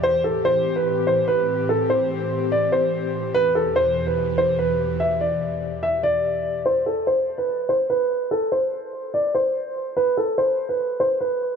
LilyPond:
<<
  \new Staff \with { instrumentName = "Grand piano" } { \time 4/4 \key e \phrygian \tempo 4 = 145 c''8 a'8 c''8. b'8. c''8 b'4 | a'8 c''4. d''8 c''4. | b'8 a'8 c''8. b'8. c''8 b'4 | e''8 d''4. e''8 d''4. |
c''8 a'8 c''8. b'8. c''8 b'4 | a'8 c''4. d''8 c''4. | b'8 a'8 c''8. b'8. c''8 b'4 | }
  \new Staff \with { instrumentName = "Analog synth pad" } { \clef bass \time 4/4 \key e \phrygian << { g'1~ | g'1~ | g'1~ | g'1 |
r1 | r1 | r1 | } \\ { <a, e c'>1~ | <a, e c'>1 | <e, b, e>1~ | <e, b, e>1 |
r1 | r1 | r1 | } >> }
>>